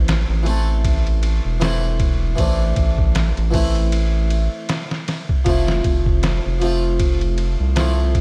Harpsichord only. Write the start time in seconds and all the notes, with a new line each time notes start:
Already playing: E3 A3 C4 E4
0.43 E3 A3 C4
0.48 A4
1.60 E3 A3 C4 E4
2.36 E3 A3 C4
2.40 D4
3.51 E3 A3 C4
3.56 E4
5.45 F3 A3 C4
5.49 E4
6.60 F3 A3 C4
6.65 F4
7.76 F3 A3 C4 E4